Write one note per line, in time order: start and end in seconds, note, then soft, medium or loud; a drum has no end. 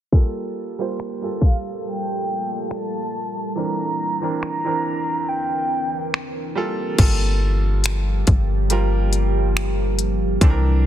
0.12 0.70 G3 medium
0.12 3.52 G3 medium
0.12 3.52 A#3 medium
0.12 0.71 A#3 medium
0.12 3.52 F4 medium
0.12 0.71 F4 medium
0.12 3.52 A4 medium
0.12 0.71 A4 medium
0.12 kick loud
0.79 1.16 G3 medium
0.79 1.16 A#3 medium
0.79 1.17 F4 medium
0.79 1.17 C5 medium
1.00 finger snap loud
1.22 2.71 G3 medium
1.22 2.71 A#3 medium
1.22 2.71 F4 medium
1.22 2.72 A4 medium
1.41 1.57 F5 medium
1.41 kick medium
1.86 2.67 G5 loud
2.71 3.58 A5 loud
2.71 finger snap loud
3.55 6.52 E3 medium
3.55 4.13 E3 medium
3.55 6.53 C4 medium
3.55 4.14 C4 medium
3.55 6.53 D4 medium
3.55 4.14 D4 medium
3.55 6.53 A#4 medium
3.55 4.14 A#4 medium
3.55 4.42 A#5 loud
4.22 4.59 E3 medium
4.22 4.59 C4 medium
4.22 4.59 D4 medium
4.22 4.60 A#4 medium
4.42 5.30 A#5 loud
4.42 finger snap loud
4.64 6.13 E3 medium
4.64 6.14 C4 medium
4.64 6.14 D4 medium
4.64 6.14 A#4 medium
5.28 6.56 G5 medium
6.14 finger snap loud
6.55 6.94 G3 medium
6.55 6.94 A#3 medium
6.55 6.94 F4 medium
6.55 6.95 A4 loud
6.98 8.23 G1 loud
6.98 10.38 F3 medium
6.98 8.51 G3 medium
6.98 10.38 G3 medium
6.98 10.38 A#3 medium
6.98 8.51 A#3 medium
6.98 8.51 F4 medium
6.98 10.38 G4 medium
6.98 8.52 A4 medium
6.98 kick loud
6.98 closed hi-hat medium
6.98 crash medium
7.84 finger snap loud
7.84 closed hi-hat medium
8.27 10.38 G1 loud
8.27 kick medium
8.27 closed hi-hat medium
8.70 10.22 G3 medium
8.70 10.23 A#3 medium
8.70 10.23 F4 medium
8.70 10.23 A#4 medium
8.70 closed hi-hat medium
9.13 closed hi-hat medium
9.57 finger snap loud
9.99 closed hi-hat medium
10.41 10.87 C2 loud
10.41 10.87 D3 medium
10.41 10.87 E3 medium
10.41 10.87 A#3 medium
10.41 10.87 C4 medium
10.41 10.87 D4 medium
10.41 10.87 E4 loud
10.41 10.49 A4 medium
10.41 kick loud
10.41 closed hi-hat medium
10.50 10.87 A#4 medium